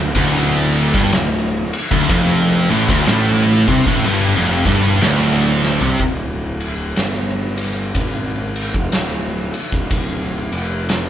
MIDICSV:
0, 0, Header, 1, 4, 480
1, 0, Start_track
1, 0, Key_signature, -1, "minor"
1, 0, Tempo, 977199
1, 1031, Time_signature, 4, 2, 24, 8
1, 5450, End_track
2, 0, Start_track
2, 0, Title_t, "Distorted electric guitar"
2, 0, Program_c, 0, 30
2, 0, Note_on_c, 0, 38, 79
2, 69, Note_off_c, 0, 38, 0
2, 75, Note_on_c, 0, 38, 106
2, 458, Note_off_c, 0, 38, 0
2, 466, Note_on_c, 0, 43, 107
2, 549, Note_off_c, 0, 43, 0
2, 556, Note_on_c, 0, 38, 76
2, 793, Note_off_c, 0, 38, 0
2, 942, Note_on_c, 0, 38, 98
2, 1026, Note_off_c, 0, 38, 0
2, 1028, Note_on_c, 0, 41, 109
2, 1319, Note_off_c, 0, 41, 0
2, 1327, Note_on_c, 0, 45, 100
2, 1413, Note_off_c, 0, 45, 0
2, 1417, Note_on_c, 0, 38, 113
2, 1503, Note_off_c, 0, 38, 0
2, 1511, Note_on_c, 0, 45, 104
2, 1801, Note_off_c, 0, 45, 0
2, 1808, Note_on_c, 0, 48, 97
2, 1893, Note_off_c, 0, 48, 0
2, 1899, Note_on_c, 0, 45, 106
2, 1983, Note_off_c, 0, 45, 0
2, 1992, Note_on_c, 0, 43, 97
2, 2131, Note_off_c, 0, 43, 0
2, 2138, Note_on_c, 0, 41, 98
2, 2279, Note_off_c, 0, 41, 0
2, 2292, Note_on_c, 0, 43, 99
2, 2464, Note_off_c, 0, 43, 0
2, 2475, Note_on_c, 0, 38, 109
2, 2855, Note_off_c, 0, 38, 0
2, 2862, Note_on_c, 0, 48, 97
2, 2944, Note_off_c, 0, 48, 0
2, 5450, End_track
3, 0, Start_track
3, 0, Title_t, "Picked electric bass"
3, 0, Program_c, 1, 34
3, 0, Note_on_c, 1, 26, 86
3, 67, Note_off_c, 1, 26, 0
3, 72, Note_on_c, 1, 26, 105
3, 443, Note_off_c, 1, 26, 0
3, 462, Note_on_c, 1, 31, 83
3, 546, Note_off_c, 1, 31, 0
3, 552, Note_on_c, 1, 26, 83
3, 832, Note_off_c, 1, 26, 0
3, 938, Note_on_c, 1, 26, 90
3, 1023, Note_off_c, 1, 26, 0
3, 1027, Note_on_c, 1, 29, 87
3, 1309, Note_off_c, 1, 29, 0
3, 1329, Note_on_c, 1, 33, 100
3, 1413, Note_off_c, 1, 33, 0
3, 1416, Note_on_c, 1, 26, 91
3, 1501, Note_off_c, 1, 26, 0
3, 1504, Note_on_c, 1, 33, 97
3, 1787, Note_off_c, 1, 33, 0
3, 1806, Note_on_c, 1, 36, 95
3, 1891, Note_off_c, 1, 36, 0
3, 1896, Note_on_c, 1, 33, 101
3, 1981, Note_off_c, 1, 33, 0
3, 1986, Note_on_c, 1, 31, 91
3, 2127, Note_off_c, 1, 31, 0
3, 2136, Note_on_c, 1, 29, 104
3, 2276, Note_off_c, 1, 29, 0
3, 2284, Note_on_c, 1, 31, 89
3, 2453, Note_off_c, 1, 31, 0
3, 2464, Note_on_c, 1, 26, 89
3, 2836, Note_off_c, 1, 26, 0
3, 2853, Note_on_c, 1, 36, 97
3, 2939, Note_off_c, 1, 36, 0
3, 2944, Note_on_c, 1, 26, 87
3, 3406, Note_off_c, 1, 26, 0
3, 3423, Note_on_c, 1, 31, 91
3, 3886, Note_off_c, 1, 31, 0
3, 3904, Note_on_c, 1, 32, 86
3, 4277, Note_off_c, 1, 32, 0
3, 4294, Note_on_c, 1, 29, 86
3, 4380, Note_off_c, 1, 29, 0
3, 4384, Note_on_c, 1, 26, 80
3, 4668, Note_off_c, 1, 26, 0
3, 4777, Note_on_c, 1, 26, 89
3, 4862, Note_off_c, 1, 26, 0
3, 4866, Note_on_c, 1, 26, 70
3, 5149, Note_off_c, 1, 26, 0
3, 5166, Note_on_c, 1, 29, 94
3, 5450, Note_off_c, 1, 29, 0
3, 5450, End_track
4, 0, Start_track
4, 0, Title_t, "Drums"
4, 73, Note_on_c, 9, 51, 89
4, 74, Note_on_c, 9, 36, 104
4, 122, Note_off_c, 9, 51, 0
4, 123, Note_off_c, 9, 36, 0
4, 371, Note_on_c, 9, 51, 70
4, 420, Note_off_c, 9, 51, 0
4, 462, Note_on_c, 9, 36, 124
4, 511, Note_off_c, 9, 36, 0
4, 552, Note_on_c, 9, 51, 99
4, 557, Note_on_c, 9, 38, 116
4, 601, Note_off_c, 9, 51, 0
4, 606, Note_off_c, 9, 38, 0
4, 851, Note_on_c, 9, 51, 82
4, 900, Note_off_c, 9, 51, 0
4, 940, Note_on_c, 9, 36, 103
4, 989, Note_off_c, 9, 36, 0
4, 1029, Note_on_c, 9, 36, 116
4, 1029, Note_on_c, 9, 51, 111
4, 1078, Note_off_c, 9, 51, 0
4, 1079, Note_off_c, 9, 36, 0
4, 1327, Note_on_c, 9, 51, 74
4, 1376, Note_off_c, 9, 51, 0
4, 1418, Note_on_c, 9, 36, 119
4, 1468, Note_off_c, 9, 36, 0
4, 1506, Note_on_c, 9, 51, 111
4, 1511, Note_on_c, 9, 38, 121
4, 1555, Note_off_c, 9, 51, 0
4, 1560, Note_off_c, 9, 38, 0
4, 1807, Note_on_c, 9, 36, 102
4, 1807, Note_on_c, 9, 51, 74
4, 1856, Note_off_c, 9, 36, 0
4, 1856, Note_off_c, 9, 51, 0
4, 1897, Note_on_c, 9, 36, 109
4, 1946, Note_off_c, 9, 36, 0
4, 1987, Note_on_c, 9, 51, 107
4, 2036, Note_off_c, 9, 51, 0
4, 2284, Note_on_c, 9, 51, 78
4, 2286, Note_on_c, 9, 36, 101
4, 2333, Note_off_c, 9, 51, 0
4, 2335, Note_off_c, 9, 36, 0
4, 2462, Note_on_c, 9, 51, 97
4, 2467, Note_on_c, 9, 38, 114
4, 2512, Note_off_c, 9, 51, 0
4, 2516, Note_off_c, 9, 38, 0
4, 2767, Note_on_c, 9, 38, 74
4, 2816, Note_off_c, 9, 38, 0
4, 2852, Note_on_c, 9, 43, 87
4, 2901, Note_off_c, 9, 43, 0
4, 2944, Note_on_c, 9, 51, 86
4, 2946, Note_on_c, 9, 36, 104
4, 2993, Note_off_c, 9, 51, 0
4, 2995, Note_off_c, 9, 36, 0
4, 3244, Note_on_c, 9, 51, 63
4, 3293, Note_off_c, 9, 51, 0
4, 3420, Note_on_c, 9, 51, 86
4, 3425, Note_on_c, 9, 38, 107
4, 3470, Note_off_c, 9, 51, 0
4, 3475, Note_off_c, 9, 38, 0
4, 3721, Note_on_c, 9, 51, 63
4, 3770, Note_off_c, 9, 51, 0
4, 3904, Note_on_c, 9, 51, 92
4, 3905, Note_on_c, 9, 36, 95
4, 3953, Note_off_c, 9, 51, 0
4, 3954, Note_off_c, 9, 36, 0
4, 4203, Note_on_c, 9, 51, 67
4, 4253, Note_off_c, 9, 51, 0
4, 4295, Note_on_c, 9, 36, 111
4, 4344, Note_off_c, 9, 36, 0
4, 4382, Note_on_c, 9, 51, 97
4, 4387, Note_on_c, 9, 38, 120
4, 4432, Note_off_c, 9, 51, 0
4, 4437, Note_off_c, 9, 38, 0
4, 4686, Note_on_c, 9, 51, 69
4, 4735, Note_off_c, 9, 51, 0
4, 4777, Note_on_c, 9, 36, 96
4, 4781, Note_on_c, 9, 38, 29
4, 4826, Note_off_c, 9, 36, 0
4, 4830, Note_off_c, 9, 38, 0
4, 4866, Note_on_c, 9, 51, 103
4, 4867, Note_on_c, 9, 36, 104
4, 4915, Note_off_c, 9, 51, 0
4, 4916, Note_off_c, 9, 36, 0
4, 5169, Note_on_c, 9, 51, 70
4, 5218, Note_off_c, 9, 51, 0
4, 5348, Note_on_c, 9, 51, 90
4, 5353, Note_on_c, 9, 38, 117
4, 5398, Note_off_c, 9, 51, 0
4, 5402, Note_off_c, 9, 38, 0
4, 5450, End_track
0, 0, End_of_file